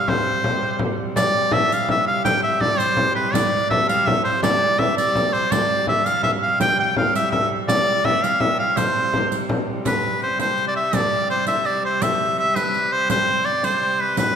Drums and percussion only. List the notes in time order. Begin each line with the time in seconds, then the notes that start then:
0.08 frame drum
0.44 frame drum
0.79 frame drum
0.98 frame drum
1.16 riq, frame drum
1.51 frame drum
1.72 riq
1.88 frame drum
2.25 riq, frame drum
2.61 frame drum
2.80 riq
2.97 frame drum
3.34 riq, frame drum
3.71 frame drum
3.89 riq
4.07 frame drum
4.43 riq, frame drum
4.61 frame drum
4.79 frame drum
4.97 riq, frame drum
5.15 riq, frame drum
5.34 riq
5.52 riq, frame drum
5.87 frame drum
6.06 riq
6.23 frame drum
6.60 riq, frame drum
6.96 frame drum
7.15 riq
7.32 frame drum
7.68 riq, frame drum
8.05 frame drum
8.24 riq
8.40 frame drum
8.77 riq, frame drum
8.96 frame drum
9.13 frame drum
9.32 riq
9.49 frame drum
9.85 riq, frame drum
10.21 riq, frame drum
10.39 riq, frame drum
10.58 riq
10.76 frame drum
10.93 riq, frame drum
11.30 riq, frame drum
11.47 riq, frame drum
11.65 riq
11.84 frame drum
12.02 riq, frame drum
12.38 riq, frame drum
12.56 riq, frame drum
12.74 riq
12.92 frame drum
13.10 riq, frame drum
13.27 frame drum
13.45 riq, frame drum
13.63 riq, frame drum
13.81 frame drum
13.99 riq, frame drum
14.17 riq, frame drum